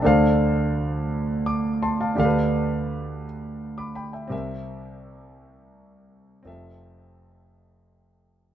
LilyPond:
\new Staff \with { instrumentName = "Grand piano" } { \time 6/8 \key f \major \tempo 4. = 56 << { r2 d'''8 <a'' c'''>16 <f'' a''>16~ | <f'' a''>16 r2 <b'' d'''>16 <g'' b''>16 <e'' g''>16~ | <e'' g''>16 r2 r8. | r2. | } \\ { <d, d d' a' c'' f''>2. | <d, d d' g' a' b' f''>2. | <c, c c' g' bes' e''>2. | <f,, f, c' f' a' e''>2. | } >> }